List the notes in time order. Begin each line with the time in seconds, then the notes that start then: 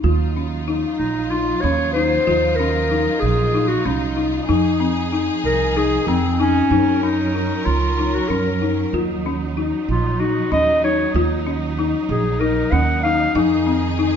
0.03 D#2 F#3 D#4 F4
0.36 C#4
0.68 D#4
0.98 A#1 D#4
1.30 D#4 F4
1.61 D#2 C#4 C#5
1.93 D#4 C5
2.27 D#2 F4
2.56 C#4 A#4
2.91 D#4
3.20 A#1 G#4
3.55 D#4
3.69 F#4
3.85 C2 C#4 D#4
4.17 D#4
4.48 F2 F3 D#4 G#4
4.80 C4
5.12 D#4
5.44 C2 A#4
5.76 D#4 G#4
6.07 F2 C4
6.40 C#4 D#4
6.71 F#2 F#3 C#4 D#4 A#4
7.03 C#4 D#4
7.35 D#4
7.66 C#2 F4
7.99 D#4
8.14 F#4
8.29 F#2 C#4 A#4
8.62 D#4
8.93 D#2 D#4 F4
9.26 C#4
9.57 D#4
9.88 A#1 F4
10.19 D#4 F#4
10.52 D#2 C#4 D#5
10.84 D#4 C#5
11.14 D#2 F4
11.47 C#4
11.79 D#4
12.09 A#1 G#4
12.40 D#4 A#4
12.72 D#2 C#4 F#5
13.03 D#4 F5
13.34 F2 D#3 D#4 G#4
13.67 C4
13.99 D#4